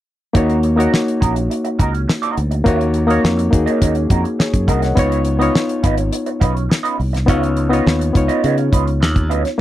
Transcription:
0.33 D#2 A#3 C#4 D#4 F#4 A#4 C#5 D#5, kick, closed hi-hat
0.50 closed hi-hat
0.63 muted clean electric guitar stroke, closed hi-hat
0.76 A#3 C#4 D#4 F#4 A#4 C#5 D#5, closed hi-hat
0.92 muted clean electric guitar stroke, snare
1.08 closed hi-hat
1.21 A#1 C#4 F#4 A#4 D#5, kick, closed hi-hat
1.35 muted clean electric guitar stroke, closed hi-hat
1.50 muted clean electric guitar stroke, closed hi-hat
1.64 muted clean electric guitar stroke, closed hi-hat
1.79 C#2 C#4 F#4 A#4 D#5, kick, closed hi-hat
1.93 muted clean electric guitar stroke, closed hi-hat
2.08 muted clean electric guitar stroke, snare
2.22 C#4 F#4 A#4 D#5, closed hi-hat
2.37 D2, muted clean electric guitar stroke, closed hi-hat
2.51 muted clean electric guitar stroke, closed hi-hat
2.64 D#2 A#3 C#4 D#4 F#4 A#4 C#5 F5, kick, closed hi-hat
2.79 muted clean electric guitar stroke, closed hi-hat
2.94 muted clean electric guitar stroke, closed hi-hat
3.07 A#3 C#4 D#4 F#4 A#4 C#5 D#5, closed hi-hat
3.23 F2, muted clean electric guitar stroke, snare
3.38 muted clean electric guitar stroke, closed hi-hat
3.50 D#2 A#3 D#4 F#4 G#4, kick, closed hi-hat
3.66 C#4 F#4 A#4 D#5, closed hi-hat
3.81 D#2 C#4 F#4 A#4 D#5, kick, closed hi-hat
3.95 muted clean electric guitar stroke, closed hi-hat
4.09 F2 C#4 F#4 A#4 D#5, kick, closed hi-hat
4.24 muted clean electric guitar stroke, closed hi-hat
4.39 G#4 C#5, muted clean electric guitar stroke, snare
4.54 F#2, kick, closed hi-hat
4.67 C2 C#4 F#4 A#4 D#5, kick, closed hi-hat
4.82 C#5 F#5, muted clean electric guitar stroke, snare, closed hi-hat
4.95 C#2 B3 C#4 D#4 F4 B4 C#5 D#5, kick, closed hi-hat
5.12 closed hi-hat
5.25 muted clean electric guitar stroke, closed hi-hat
5.39 B3 C#4 D#4 F4 B4 C#5 D#5, closed hi-hat
5.55 snare
5.69 closed hi-hat
5.83 G#1 C#4 F4 B4 D#5, kick, closed hi-hat
5.97 muted clean electric guitar stroke, closed hi-hat
6.12 muted clean electric guitar stroke, closed hi-hat
6.26 muted clean electric guitar stroke, closed hi-hat
6.40 B1 C#4 F4 B4 D#5, kick, closed hi-hat
6.55 muted clean electric guitar stroke, closed hi-hat
6.69 muted clean electric guitar stroke, snare
6.83 C#4 F4 B4 D#5, closed hi-hat
6.98 C2, muted clean electric guitar stroke, open hi-hat
7.13 muted clean electric guitar stroke, snare, closed hi-hat
7.26 C#2 B3 C#4 D#4 F4 B4 C#5 F5, kick, closed hi-hat
7.42 muted clean electric guitar stroke, closed hi-hat
7.56 muted clean electric guitar stroke, closed hi-hat
7.70 B3 C#4 D#4 F4 B4 C#5 D#5, closed hi-hat
7.85 D#2, muted clean electric guitar stroke, snare
7.99 muted clean electric guitar stroke, closed hi-hat
8.13 C#2 B3 D#4 F4 C#5, kick, closed hi-hat
8.28 C#4 F4 B4 D#5, closed hi-hat
8.43 C#3 C#4 F4 B4 D#5, closed hi-hat
8.57 muted clean electric guitar stroke, closed hi-hat
8.72 C#2 C#4 F4 B4 D#5, kick, closed hi-hat
8.86 muted clean electric guitar stroke, closed hi-hat
9.00 D#2, muted clean electric guitar stroke, snare
9.16 kick, closed hi-hat
9.29 D2 C#4 F4 B4 D#5, closed hi-hat
9.44 muted clean electric guitar stroke, snare, closed hi-hat

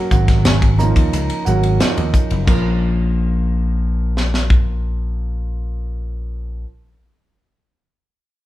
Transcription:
Already playing: F#3 A#3 C#4 F#4
0.11 G#1 F#5, kick, hi-hat pedal
0.28 kick, snare, ride
0.45 G#5, snare, hi-hat pedal, ride, muted conga, high conga, low conga
0.62 kick, ride
0.78 F3 A#3 C#4 D#4 A#5, hi-hat pedal, high conga
0.96 D#2, kick, ride
1.12 C#2, hi-hat pedal, ride, muted conga
1.30 muted slap bass stroke, ride
1.45 G#1 F#3 A#3 C#4 F#4 F#5, hi-hat pedal, muted conga
1.63 ride
1.80 F3 A#3 C#4 D#4, snare, hi-hat pedal, ride, high conga
1.97 D#2, ride
2.14 kick, hi-hat pedal
2.30 F#1, ride
2.45 A#1 F3 A#3 C#4, kick, crash, muted conga
2.49 A#4
4.17 snare
4.34 snare
4.50 kick

